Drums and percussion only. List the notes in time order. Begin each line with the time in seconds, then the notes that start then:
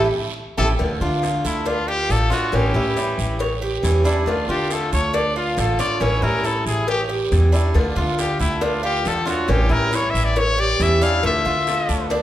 0.58 low bongo, long guiro
0.79 cowbell, long guiro
1.23 cowbell, short guiro
1.46 short guiro
1.66 cowbell, long guiro
2.10 cowbell, short guiro
2.31 cowbell, short guiro
2.53 cowbell, long guiro
2.97 cowbell, short guiro
3.19 short guiro
3.40 cowbell, long guiro
3.84 cowbell, short guiro
4.06 short guiro
4.27 cowbell, long guiro
4.70 cowbell, short guiro
4.93 short guiro
5.14 cowbell, long guiro
5.58 cowbell, short guiro
5.79 cowbell, short guiro
6.01 cowbell, long guiro
6.45 cowbell, short guiro
6.67 short guiro
6.88 cowbell, long guiro
7.32 cowbell, short guiro
7.54 short guiro
7.75 cowbell, long guiro
8.19 cowbell, short guiro
8.41 short guiro
8.62 cowbell, long guiro
9.05 cowbell, short guiro
9.27 cowbell, short guiro
9.49 cowbell, long guiro
9.93 cowbell, short guiro
10.15 short guiro
10.37 cowbell, long guiro
10.80 cowbell, short guiro
11.02 short guiro
11.23 cowbell, long guiro
11.67 cowbell, short guiro
11.89 short guiro
12.11 cowbell, long guiro